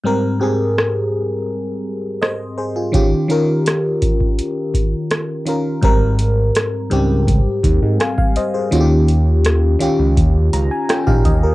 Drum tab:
HH |----------------|x-x-x-x-x-x-x-x-|x-x-x-x-x-x-x-x-|x-x-x-x-x-x-x-x-|
SD |----r-------r---|----r-------r---|----r-------r---|----r-------r---|
BD |----------------|o-----oo--o-----|o-------o-o--o--|--------o----oo-|